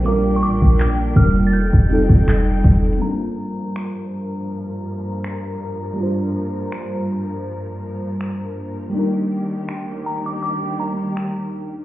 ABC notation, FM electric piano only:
X:1
M:4/4
L:1/8
Q:"Swing 16ths" 1/4=81
K:Gm
V:1 name="FM electric piano"
[G,B,CDFB]3 [G,B,DFB] z [G,CEFA]3 | [G,B,DFB]8 | [G,B,DFc]8 | [G,B,DEB]8 |]